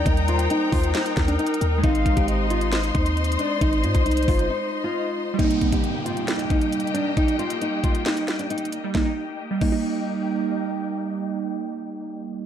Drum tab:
CC |------------------------------------------------------------------------------------------------|------------------------------------------------------------------------------------------------|------------------------------------------------------------------------------------------------|------------------------------------------------------------------------------------------------|
HH |x-----x-----x-----x-----x-----------o-----x-----x-----x-----x-----x-----x---x---x---x-----------|x-----x-----x-----x-----x-----------x-----x-----x-----x-----x-----x-----x---x---x---x-----------|x-----x-----x-----x-----x--x--x--x--o-----x-----------------------------------------------------|x-----x-----x-----x-----x-----------x-----x-----x-----x-----x-----x-----x---x---x---x-----------|
SD |------------------------------------------------o-----------o-----------------------------------|------------------------------------------------o-----------------------------------------------|------------------------------------------------------------------------------------------------|------------------------------------------------o-----------------------------------------------|
BD |o-----------------------------------o-----------------------o-----------------------------------|o-----------o-----o-----------------------------------------o-----------------------------------|o-----------------o-----------------o-----------------------------------------------------------|o-----------o-----o-----------------------------------------o-----------------------------------|

CC |------------------------------------------------------------------------------------------------|------------------------------------x-----------------------------------------------------------|------------------------------------------------------------------------------------------------|
HH |x-----x-----x-----x-----x-----------x-----x-----x-----x-----x-----x-----x---x---x---x-----------|------------------------------------------------------------------------------------------------|------------------------------------------------------------------------------------------------|
SD |------------------------------------------------o-----------o-----------------------------------|o-----------------------------------------------------------------------------------------------|------------------------------------------------------------------------------------------------|
BD |o-----------------------------------o-----------------------------------------------------------|o-----------------------------------o-----------------------------------------------------------|------------------------------------------------------------------------------------------------|